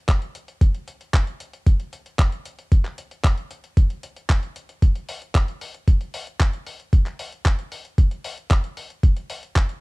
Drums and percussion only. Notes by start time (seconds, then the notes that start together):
0.09 kick, clap, closed hi-hat
0.22 closed hi-hat
0.35 closed hi-hat
0.48 closed hi-hat
0.61 kick, closed hi-hat
0.75 closed hi-hat
0.88 closed hi-hat
1.01 closed hi-hat
1.14 kick, clap, closed hi-hat
1.27 closed hi-hat
1.40 closed hi-hat
1.53 closed hi-hat
1.66 kick, closed hi-hat
1.80 closed hi-hat
1.93 closed hi-hat
2.06 closed hi-hat
2.19 kick, clap, closed hi-hat
2.32 closed hi-hat
2.45 closed hi-hat
2.59 closed hi-hat
2.72 kick, closed hi-hat
2.85 clap, closed hi-hat
2.98 closed hi-hat
3.11 closed hi-hat
3.24 kick, clap, closed hi-hat
3.38 closed hi-hat
3.51 closed hi-hat
3.64 closed hi-hat
3.77 kick, closed hi-hat
3.90 closed hi-hat
4.03 closed hi-hat
4.16 closed hi-hat
4.30 kick, clap, closed hi-hat
4.43 closed hi-hat
4.56 closed hi-hat
4.69 closed hi-hat
4.82 kick, closed hi-hat
4.96 closed hi-hat
5.09 open hi-hat
5.22 closed hi-hat
5.35 kick, clap, closed hi-hat
5.48 closed hi-hat
5.61 open hi-hat
5.74 closed hi-hat
5.88 kick, closed hi-hat
6.01 closed hi-hat
6.14 open hi-hat
6.27 closed hi-hat
6.40 kick, clap, closed hi-hat
6.53 closed hi-hat
6.66 open hi-hat
6.80 closed hi-hat
6.93 kick, closed hi-hat
7.06 clap, closed hi-hat
7.19 open hi-hat
7.32 closed hi-hat
7.45 kick, clap, closed hi-hat
7.59 closed hi-hat
7.72 open hi-hat
7.85 closed hi-hat
7.98 kick, closed hi-hat
8.11 closed hi-hat
8.24 open hi-hat
8.38 closed hi-hat
8.51 kick, clap, closed hi-hat
8.64 closed hi-hat
8.77 open hi-hat
8.90 closed hi-hat
9.03 kick, closed hi-hat
9.17 closed hi-hat
9.30 open hi-hat
9.43 closed hi-hat
9.56 kick, clap, closed hi-hat
9.69 closed hi-hat